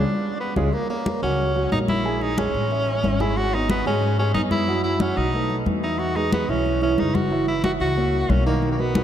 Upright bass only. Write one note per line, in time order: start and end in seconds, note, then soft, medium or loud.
0.56 0.69 C#2 medium
1.23 1.68 C#2 medium
1.72 2.48 A#1 medium
2.54 3.00 A1 medium
3.03 3.80 G#1 medium
3.86 4.32 G#2 medium
4.35 5.11 F#2 medium
5.17 5.63 B1 medium
5.66 6.43 E2 medium
6.49 6.95 B1 medium
6.98 7.74 F#1 medium
7.80 8.26 C#2 medium
8.29 9.04 B1 loud